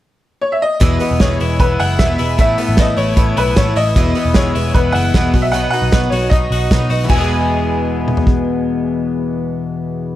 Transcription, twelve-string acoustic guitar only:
0.80 E2 B2 E3 G#3 B3 E4
0.99 E3 G#3 B3 E4
1.20 E2 B2 E3 G#3 B3 E4
1.40 E3 G#3 B3 E4
1.59 E3 G#3 B3 E4
2.00 E2 B2 E3 G#3 B3 E4
2.18 E3 G#3 B3 E4
2.38 A2 E3 A3 B3 E4
2.58 A3 B3 E4
2.77 A2 E3 A3 B3 E4
2.97 A3 B3 E4
3.16 E3 A3 B3 E4
3.56 A2 E3 A3 B3 E4
3.77 A3 B3 E4
3.96 E2 B2 E3 G#3 B3 E4
4.15 E3 G#3 B3 E4
4.35 E2 B2 E3 G#3 B3 E4
4.55 E3 G#3 B3 E4
4.74 E3 G#3 B3 E4
5.14 E2 B2 E3 G#3 B3 E4
5.34 B3 D#4 F#4
5.53 B2 F#3 B3 D#4 F#4
5.73 B3 D#4 F#4
5.91 B2 F#3 B3 D#4 F#4
6.12 B3 D#4 F#4
6.31 F#3 B3 D#4 F#4
6.71 B2 F#3 B3 D#4 F#4
6.89 B3 D#4 F#4
7.04 E2
7.09 B2
7.13 E3
7.17 G#3 B3
7.24 G#4

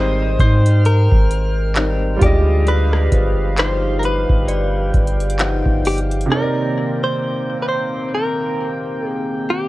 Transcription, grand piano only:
Already playing: G#3 D#4 G4 A#4 C5
2.16 G3 F4
2.21 G#3 D5
2.26 D#5
6.26 C3 C4
6.31 D#4 A#4
6.35 C#5
6.42 D5

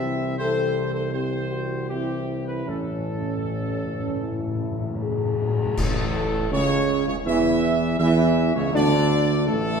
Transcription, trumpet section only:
Already playing: E5
0.38 C5
0.94 C5
1.13 C5
1.89 G4
2.48 B4
2.68 A4
5.77 A4
6.53 C#5
7.08 C#5
7.27 E5
7.99 E5
8.55 C#5
8.75 D5
9.48 A4

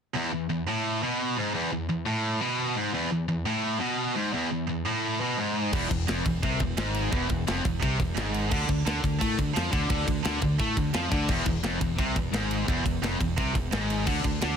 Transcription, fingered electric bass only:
5.73 E1
5.91 E1
6.09 F1
6.26 E1
6.43 C2
6.61 E1
6.78 G#1
7.12 E1
7.30 E1
7.48 F1
7.65 E1
7.83 C2
8.00 E1
8.17 G#1
8.51 D2
8.69 D2
8.86 D2
9.03 D2
9.22 A2
9.39 D2
9.57 F2
9.73 D2
9.90 D2
10.08 D2
10.26 D2
10.42 D2
10.60 A2
10.77 D2
10.95 F2
11.12 D2
11.30 E1
11.47 E1
11.64 F1
11.82 E1
11.98 C2
12.16 E1
12.33 G#1
12.68 E1
12.85 E1
13.02 F1
13.20 E1
13.38 C2
13.55 E1
13.73 G#1
14.07 D2
14.25 D2
14.43 D2

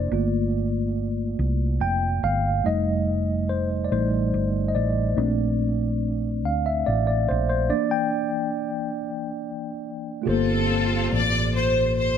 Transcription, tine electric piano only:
Already playing: A#3 D4 E4 C5 D5
0.12 A3 A#3 F4
1.81 G5
2.24 F5
2.64 G3 A3 D#4 D#5
3.49 C5
3.85 D5
3.91 G3 A3 D#4 C5
4.68 D#5
4.75 D5
5.17 A3 C4 D4
6.45 F5
6.66 E5
6.86 D5
7.07 D5
7.29 C5
7.49 C5
7.69 E3 A#3 D4 D5
7.91 G5
10.22 G2 A3 F4 G4
10.27 A#3 A4 C5

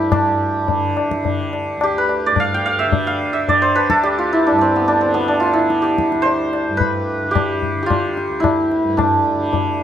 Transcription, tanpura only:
Already playing: D2 G2 D3
0.12 G2
0.67 D3
1.22 D3
1.77 D2
2.31 G2
2.86 D3
3.42 D3
3.96 D2
4.51 G2
5.05 D3
5.58 D3
6.14 D2
6.69 G2
7.23 D3
7.76 D3
8.29 D2
8.83 G2
9.36 D3

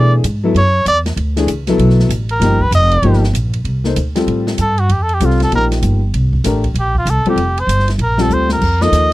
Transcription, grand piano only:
Already playing: E3 A3 D4 G#4
0.44 F#3 B3 E4 A4
1.36 E3 A3 D4 G#4
1.68 F#3 B3 E4 A4
2.40 F3 A#3 D#4 G4
3.04 F3 A#3 D#4 G4
3.85 A#3 D#4 A4 C5
4.15 G3 C4 F4 A4
5.21 G3 C4 F4 A4
5.52 F3 A#3 D#4 G4
6.45 A3 D4 G4 A#4
7.26 G3 C4 F4 A4
8.19 G3 C4 F4 A4
8.81 F3 A#3 D#4 A4

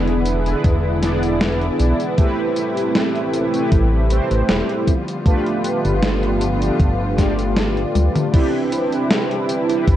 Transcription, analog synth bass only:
Already playing: E1
0.65 E1
1.80 B1
3.72 A1
4.31 A1
4.49 E1
5.85 G1
6.80 G1
7.95 D2
9.88 C2

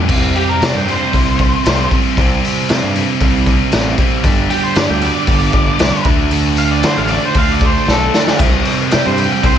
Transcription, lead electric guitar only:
0.36 G4
0.49 A#4
0.64 D5
0.77 G5
0.91 C5
4.50 G4
4.63 C5
4.77 D5
4.90 G5
5.05 D5
6.58 F5
6.71 D5
6.85 C5
6.98 F5
7.10 D5
7.25 C5
7.38 F5
7.52 D5
7.66 C5
7.90 A4
8.92 G5
9.06 C5
9.19 G5
9.33 G5
9.44 C5

